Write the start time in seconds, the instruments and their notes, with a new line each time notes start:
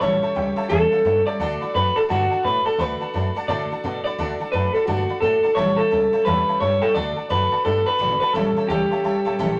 0.00 upright bass A1, steel-string acoustic guitar A2 E3 G3 C#4 G4 A4, clean electric guitar C#5, honky-tonk piano C#5 E5 A5
0.22 steel-string acoustic guitar G3 C#4 G4 A4, honky-tonk piano C#5 E5 A5, muted upright bass stroke
0.35 upright bass C#2, steel-string acoustic guitar G3 C#4 G4 A4, honky-tonk piano C#5 E5 G5
0.56 steel-string acoustic guitar G3 C#4 G4 A4, honky-tonk piano C#5 E5 A5, muted upright bass stroke
0.69 upright bass E2, steel-string acoustic guitar A2 E3 G3 C#4 G4 A4, clean electric guitar A4, honky-tonk piano C#5 E5 A5
0.91 steel-string acoustic guitar G3 C#4 G4 A4, honky-tonk piano C#5 E5 F#5
1.04 upright bass G2, steel-string acoustic guitar G3 C#4 G4 A4, honky-tonk piano C#5 E5 F#5
1.25 steel-string acoustic guitar G3 C#4 G4 A4, honky-tonk piano C#5 E5 A5, clean electric guitar D5, muted upright bass stroke
1.39 upright bass D2, steel-string acoustic guitar D3 A3 D4 F#4 A4, honky-tonk piano D5 F#5 A5
1.60 steel-string acoustic guitar F#4 A4, honky-tonk piano D5 F#5 B5, muted upright bass stroke
1.64 steel-string acoustic guitar D4
1.74 upright bass F#2, steel-string acoustic guitar A3 D4 F#4 A4, clean electric guitar B4, honky-tonk piano D5 F#5 B5
1.95 steel-string acoustic guitar D4 F#4 A4, clean electric guitar A4, honky-tonk piano D5 F#5 A5, muted upright bass stroke
2.08 upright bass G2, steel-string acoustic guitar D3 A3 D4 F#4 A4, clean electric guitar F#4, honky-tonk piano D5 F#5 A5
2.30 steel-string acoustic guitar D4 F#4 A4, honky-tonk piano D5 F#5 A5
2.43 upright bass A2, steel-string acoustic guitar A3, clean electric guitar B4, honky-tonk piano D5 F#5 B5
2.47 steel-string acoustic guitar D4 F#4 A4
2.65 steel-string acoustic guitar D4 F#4 A4, clean electric guitar A4, honky-tonk piano D5 F#5 A5, muted upright bass stroke
2.78 upright bass D2, steel-string acoustic guitar D3 A3 D4 F#4 A4, clean electric guitar B4, honky-tonk piano D5 F#5 B5
3.00 steel-string acoustic guitar D4 F#4 A4, honky-tonk piano D5 F#5 A5, muted upright bass stroke
3.14 upright bass F#2, steel-string acoustic guitar A3 D4 F#4 A4, honky-tonk piano D5 F#5 A5
3.35 steel-string acoustic guitar D4 F#4 A4, honky-tonk piano D5 F#5 A5, muted upright bass stroke
3.48 upright bass A2, steel-string acoustic guitar D3 A3 D4 F#4 A4, clean electric guitar D5, honky-tonk piano D5 F#5 A5
3.70 steel-string acoustic guitar D4 F#4 A4, honky-tonk piano D5 F#5 A5, muted upright bass stroke
3.84 upright bass B2, steel-string acoustic guitar A3 D4 F#4 A4, honky-tonk piano D5 F#5 A5
4.04 steel-string acoustic guitar D4 F#4 A4, clean electric guitar D5, honky-tonk piano D5 F#5 B5, muted upright bass stroke
4.18 upright bass D2, steel-string acoustic guitar D3 A3 D4 F#4 A4, honky-tonk piano D5 F#5 A5
4.39 steel-string acoustic guitar D4 F#4 A4, honky-tonk piano D5 F#5 A5, muted upright bass stroke
4.52 upright bass F#2, steel-string acoustic guitar A3 D4 F#4 A4, clean electric guitar B4, honky-tonk piano D5 F#5 A5
4.73 steel-string acoustic guitar D4 F#4 A4, clean electric guitar A4, honky-tonk piano D5 F#5 B5, muted upright bass stroke
4.85 upright bass G2, steel-string acoustic guitar D3 A3 D4 F#4 A4, clean electric guitar F#4, honky-tonk piano D5 F#5 A5
5.09 steel-string acoustic guitar D4 F#4 A4, honky-tonk piano D5 F#5 B5, muted upright bass stroke
5.20 upright bass A2, steel-string acoustic guitar A3 D4 F#4 A4, clean electric guitar A4, honky-tonk piano D5 F#5 A5
5.43 steel-string acoustic guitar D4 F#4 A4, honky-tonk piano D5 F#5 A5, muted upright bass stroke
5.55 upright bass A1, steel-string acoustic guitar A2 E3 G3 C#4 G4 A4, clean electric guitar C#5, honky-tonk piano C#5 E5 A5
5.77 steel-string acoustic guitar G3 C#4 G4 A4, clean electric guitar A4, honky-tonk piano C#5 E5 A5, muted upright bass stroke
5.90 upright bass C#2, steel-string acoustic guitar G3 C#4 G4 A4, honky-tonk piano C#5 E5 A5
6.12 steel-string acoustic guitar G3 C#4 G4 A4, honky-tonk piano C#5 E5 A5
6.25 upright bass E2, steel-string acoustic guitar A2 E3 G3 C#4 G4 A4, clean electric guitar B4, honky-tonk piano C#5 E5 A5
6.48 steel-string acoustic guitar G3 C#4 G4 A4, honky-tonk piano C#5 E5 A5, muted upright bass stroke
6.60 upright bass G2, steel-string acoustic guitar G3 C#4 G4 A4, honky-tonk piano C#5 E5 A5, clean electric guitar C#5
6.81 steel-string acoustic guitar G3 C#4 G4 A4, clean electric guitar A4, honky-tonk piano C#5 E5 G5, muted upright bass stroke
6.94 upright bass D2, steel-string acoustic guitar D3 A3 D4 F#4 A4, clean electric guitar D5, honky-tonk piano D5 F#5 A5
7.15 steel-string acoustic guitar D4 F#4 A4, honky-tonk piano D5 F#5 A5
7.30 upright bass F#2, steel-string acoustic guitar D3 A3 D4 F#4 A4, clean electric guitar B4, honky-tonk piano D5 F#5 A5
7.51 steel-string acoustic guitar D4 F#4 A4, honky-tonk piano D5 F#5 A5
7.64 upright bass G2, steel-string acoustic guitar A3 D4 F#4 A4, clean electric guitar A4, honky-tonk piano D5 F#5 B5
7.85 steel-string acoustic guitar D4 F#4 A4, clean electric guitar B4, honky-tonk piano D5 F#5 A5, muted upright bass stroke
7.99 upright bass G#1, steel-string acoustic guitar D3 A3 D4 F#4 A4, honky-tonk piano D5 F#5 B5
8.20 steel-string acoustic guitar D4 F#4 A4, clean electric guitar B4, honky-tonk piano D5 F#5 A5, muted upright bass stroke
8.33 upright bass A1, steel-string acoustic guitar A2 E3 G3 C#4 G4 A4, clean electric guitar A4, honky-tonk piano C#5 E5 A5
8.56 steel-string acoustic guitar G3 C#4 G4 A4, honky-tonk piano C#5 E5 A5, muted upright bass stroke
8.68 upright bass C#2, steel-string acoustic guitar A2 E3 G3 C#4 G4 A4, clean electric guitar G4, honky-tonk piano C#5 E5 A5
8.91 steel-string acoustic guitar G3 C#4 G4 A4, honky-tonk piano C#5 E5 A5, muted upright bass stroke
9.03 upright bass C#2, steel-string acoustic guitar G3 C#4 G4 A4, honky-tonk piano C#5 E5 A5
9.25 upright bass A1, steel-string acoustic guitar G3 C#4 G4 A4, honky-tonk piano C#5 E5 A5
9.39 upright bass A1, steel-string acoustic guitar A2 E3 G3 C#4 G4 A4, honky-tonk piano C#5 E5 A5